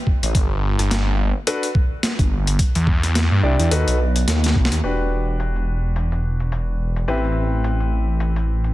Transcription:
0.07 kick
0.23 detuned saw bass A1, closed hi-hat
0.35 detuned saw bass G1, kick, closed hi-hat
0.79 detuned saw bass G1, cross-stick, closed hi-hat
0.91 snare, closed hi-hat
1.47 grand piano D4 F#4 A4 B4, closed hi-hat
1.63 closed hi-hat
1.75 kick
2.03 snare, closed hi-hat
2.19 detuned saw bass G1, kick, closed hi-hat
2.47 closed hi-hat
2.59 kick, closed hi-hat
2.75 detuned saw bass E2, closed hi-hat
2.87 kick
3.03 cross-stick, closed hi-hat
3.15 snare, closed hi-hat
3.31 detuned saw bass G2
3.43 detuned saw bass C2, grand piano D4 E4 G4 D5
3.59 detuned saw bass E2, closed hi-hat
3.71 detuned saw bass D#2, grand piano D#4 F#4 A4 B4, closed hi-hat
3.88 detuned saw bass B1, closed hi-hat
4.16 closed hi-hat
4.28 detuned saw bass D#2, snare, closed hi-hat
4.44 snare, closed hi-hat
4.56 detuned saw bass B1, kick
4.65 snare
4.72 detuned saw bass D#2, closed hi-hat
4.83 detuned saw bass E1, grand piano D4 F#4 G4 B4, closed hi-hat
5.40 closed hi-hat
5.56 closed hi-hat
5.96 closed hi-hat
6.12 closed hi-hat
6.40 closed hi-hat
6.52 closed hi-hat
6.96 closed hi-hat
7.08 detuned saw bass A1, grand piano C4 E4 G4 B4, closed hi-hat
7.14 closed hi-hat
7.17 closed hi-hat
7.24 closed hi-hat
7.27 closed hi-hat
7.32 closed hi-hat
7.64 closed hi-hat
7.80 closed hi-hat
8.20 closed hi-hat
8.36 closed hi-hat
8.64 closed hi-hat

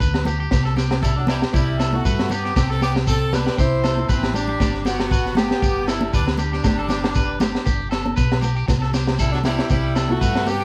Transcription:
0.00 fingered electric bass D2, clean electric guitar B4, kick, shekere
0.14 snare, low agogo
0.25 nylon-string guitar B3, clean electric guitar G4, low conga, shekere
0.40 clean electric guitar G4
0.51 fingered electric bass C2, nylon-string guitar B3, clean electric guitar G4, kick, snare, low agogo, shekere
0.65 clean electric guitar A4, snare
0.76 clean electric guitar G4, snare, low conga, shekere
0.91 nylon-string guitar C4, snare, low agogo
1.03 tenor saxophone G3, horn section E4, clean electric guitar A4, kick, shekere
1.16 tenor saxophone F#3, horn section D4
1.27 tenor saxophone G3, nylon-string guitar B3, horn section E4, clean electric guitar G4, snare, high conga, low conga, low agogo, shekere
1.42 snare
1.53 fingered electric bass C2, tenor saxophone G3, nylon-string guitar C4, horn section E4, clean electric guitar G4, kick, shekere
1.79 clean electric guitar A4, snare, low agogo, shekere
1.93 tenor saxophone A3, nylon-string guitar E4, horn section F#4, high conga
2.05 fingered electric bass G2, clean electric guitar B4, kick, shekere
2.19 snare, low agogo
2.30 nylon-string guitar G3, tenor saxophone B3, clean electric guitar G4, horn section G4, low conga, shekere
2.45 clean electric guitar G4, snare
2.56 fingered electric bass C2, nylon-string guitar B3, tenor saxophone C4, horn section G4, clean electric guitar G4, kick, snare, low agogo, shekere
2.70 tenor saxophone C4, clean electric guitar A4, horn section A4, snare
2.81 tenor saxophone B3, horn section G4, clean electric guitar G4, snare, low conga, shekere
2.95 nylon-string guitar C4, snare, low agogo
3.07 tenor saxophone C4, clean electric guitar A4, horn section A4, kick, shekere
3.33 nylon-string guitar B3, tenor saxophone D4, clean electric guitar G4, horn section B4, snare, high conga, low conga, low agogo, shekere
3.47 snare
3.57 fingered electric bass C2, nylon-string guitar C4, tenor saxophone E4, clean electric guitar G4, horn section C5, kick, shekere
3.84 clean electric guitar A4, snare, low conga, low agogo, shekere
3.97 nylon-string guitar E4, high conga
4.09 fingered electric bass A1, tenor saxophone E3, horn section C4, clean electric guitar B4, kick, high conga, shekere
4.22 snare, high conga, low agogo
4.34 tenor saxophone G3, nylon-string guitar C4, horn section D4, clean electric guitar G4, low conga, shekere
4.47 clean electric guitar G4, low conga
4.60 fingered electric bass G1, nylon-string guitar A3, clean electric guitar G4, kick, snare, low agogo, shekere
4.74 snare
4.85 tenor saxophone B3, horn section F#4, clean electric guitar G4, snare, low conga, shekere
4.99 nylon-string guitar B3, snare, low agogo
5.11 clean electric guitar B4, kick, shekere
5.26 snare
5.35 nylon-string guitar A3, tenor saxophone B3, horn section G4, clean electric guitar G4, snare, high conga, low conga, low agogo, shekere
5.51 snare
5.62 fingered electric bass G1, nylon-string guitar B3, clean electric guitar G4, kick, shekere
5.87 tenor saxophone G3, horn section E4, clean electric guitar A4, snare, low agogo, shekere
6.01 nylon-string guitar D4, high conga
6.14 fingered electric bass D2, tenor saxophone G3, horn section D4, clean electric guitar B4, kick, shekere
6.27 snare, low agogo
6.37 tenor saxophone G3, nylon-string guitar B3, horn section D4, clean electric guitar G4, low conga, shekere
6.53 clean electric guitar G4, snare
6.64 fingered electric bass G1, nylon-string guitar A3, clean electric guitar G4, kick, snare, low agogo, shekere
6.79 clean electric guitar A4
6.89 clean electric guitar G4, snare, low conga, shekere
7.04 nylon-string guitar B3, snare, low agogo
7.15 clean electric guitar B4, kick, shekere
7.40 nylon-string guitar A3, clean electric guitar G4, snare, high conga, low conga, low agogo, shekere
7.55 snare
7.66 fingered electric bass G1, nylon-string guitar B3, clean electric guitar G4, kick, shekere
7.91 clean electric guitar A4, snare, low agogo, shekere
8.05 nylon-string guitar D4, high conga
8.16 fingered electric bass B1, clean electric guitar B4, kick, snare, shekere
8.32 snare, low agogo
8.41 nylon-string guitar B3, clean electric guitar G4, low conga, shekere
8.56 clean electric guitar G4
8.68 fingered electric bass C2, nylon-string guitar B3, muted clean electric guitar stroke, kick, snare, low agogo, shekere
8.82 clean electric guitar A4, snare
8.93 clean electric guitar G4, snare, low conga, shekere
9.07 nylon-string guitar C4, snare, low agogo
9.19 tenor saxophone G3, horn section E4, clean electric guitar A4, kick, shekere
9.32 tenor saxophone F#3, horn section D4, snare
9.44 tenor saxophone G3, nylon-string guitar B3, horn section E4, clean electric guitar G4, snare, high conga, low conga, low agogo, shekere
9.59 snare
9.70 fingered electric bass C2, tenor saxophone G3, nylon-string guitar C4, horn section E4, clean electric guitar G4, kick, shekere
9.95 clean electric guitar A4, snare, low agogo, shekere
10.09 tenor saxophone A3, nylon-string guitar E4, horn section F#4, high conga
10.21 fingered electric bass G2, clean electric guitar B4, kick, shekere
10.35 snare, low agogo
10.46 tenor saxophone B3, nylon-string guitar C4, clean electric guitar G4, horn section G4, low conga, shekere
10.61 clean electric guitar G4

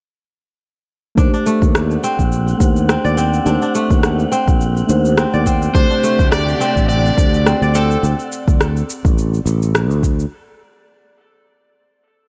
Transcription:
1.15 fretless electric bass D#2, synth keys A3 D4 G4, kora D4, synth texture F#5, kick, shaker
1.19 synth keys C5
1.34 kora D4, shaker
1.46 kora A3, shaker
1.62 fretless electric bass D#2, kick, shaker
1.75 cross-stick, shaker
1.91 shaker
2.04 kora C4, shaker
2.19 fretless electric bass A#1, kick, shaker
2.32 shaker
2.48 shaker
2.58 fretless electric bass D#2, synth keys A3 D4 G4, kick, shaker
2.62 synth keys C5
2.76 shaker
2.89 kora C4, cross-stick, shaker
3.04 fretless electric bass D#2, kora D5, shaker
3.17 kora C4, shaker
3.34 shaker
3.44 fretless electric bass D#2, synth keys A3 D4 G4 C5, kora D4, shaker
3.62 kora D4, shaker
3.75 kora A3, shaker
3.90 fretless electric bass D#2, kick, shaker
4.03 cross-stick, shaker
4.19 shaker
4.32 kora C4, shaker
4.48 fretless electric bass A#1, kick, shaker
4.61 shaker
4.77 shaker
4.86 fretless electric bass D#2, synth keys A3 D4 G4, shaker
4.90 synth keys C5
5.05 shaker
5.17 kora C4, cross-stick, shaker
5.34 fretless electric bass D#2, kora D5, shaker
5.46 kora C4, kick, shaker
5.62 shaker
5.73 fretless electric bass D2, string section C3 A3 D4 G4, synth keys A3 D4 G4 C5, kora D4, electric slide guitar C5, kick, shaker
5.90 kora D4, shaker
6.03 kora A3, shaker
6.19 fretless electric bass D2, kick, shaker
6.32 electric slide guitar D5, cross-stick, shaker
6.48 shaker
6.60 kora C4, shaker
6.76 fretless electric bass A1, kick, shaker
6.89 electric slide guitar D5, shaker
7.06 shaker
7.16 fretless electric bass D2, synth keys A3 D4 G4 C5, kick, shaker
7.34 shaker
7.46 kora C4, cross-stick, shaker
7.62 fretless electric bass D2, kora D5, shaker
7.75 kora C4, electric slide guitar A4, shaker
7.91 shaker
8.03 fretless electric bass D2, shaker
8.20 shaker
8.32 shaker
8.48 fretless electric bass D2, kick, shaker
8.61 cross-stick, shaker
8.77 shaker
8.90 shaker
9.05 fretless electric bass A1, kick, shaker
9.18 shaker
9.34 shaker
9.46 fretless electric bass A1, shaker
9.63 shaker
9.75 cross-stick, shaker
9.90 fretless electric bass D2, shaker
10.03 kick, shaker
10.20 shaker

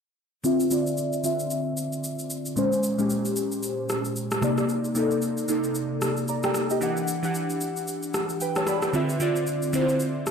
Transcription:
0.44 synth keys D3 C4 F4 E5, shaker
0.60 shaker
0.70 synth keys D3 C4 F4 D5, shaker
0.87 shaker
0.97 shaker
1.13 shaker
1.23 synth keys D3 C4 F4 E5, shaker
1.40 shaker
1.51 shaker
1.77 shaker
1.93 shaker
2.04 shaker
2.19 shaker
2.30 shaker
2.46 shaker
2.56 synth keys A#2 G#3 C#4 C5, shaker
2.72 shaker
2.83 shaker
2.98 synth keys A#2 G#3 C#4 G4, shaker
3.10 shaker
3.25 shaker
3.36 shaker
3.52 shaker
3.63 shaker
3.89 cross-stick, shaker
4.05 shaker
4.16 shaker
4.31 cross-stick, shaker
4.42 synth keys C3 A#3 D#4 D5, cross-stick, shaker
4.58 cross-stick, shaker
4.69 shaker
4.85 shaker
4.95 synth keys C3 A#3 D#4 A4, shaker
5.11 shaker
5.22 shaker
5.37 shaker
5.48 synth keys C3 A#3 D#4 A4, shaker
5.64 shaker
5.75 shaker
6.02 cross-stick, shaker
6.17 shaker
6.28 synth keys D5 A#5, shaker
6.43 synth keys A#4 G5, cross-stick, shaker
6.54 cross-stick, shaker
6.70 synth keys G4 D#5, shaker
6.81 synth keys E3 D4 G4 F#5, shaker
6.97 shaker
7.08 shaker
7.23 synth keys E3 D4 G4 F#5, shaker
7.35 shaker
7.50 shaker
7.61 shaker
7.76 shaker
7.88 shaker
8.03 shaker
8.14 cross-stick, shaker
8.29 shaker
8.41 synth keys B4 G5, shaker
8.56 synth keys C#5 A5, cross-stick, shaker
8.67 synth keys D5 B5, cross-stick, shaker
8.82 synth keys B4 G5, cross-stick, shaker
8.93 synth keys D3 C4 F4 E5, shaker
9.09 shaker
9.20 synth keys D3 C4 F4 D5, shaker
9.36 shaker
9.47 shaker
9.62 shaker
9.73 synth keys D3 C4 E4 C5, shaker
9.81 synth keys F4
9.89 shaker
10.00 shaker
10.27 cross-stick, shaker

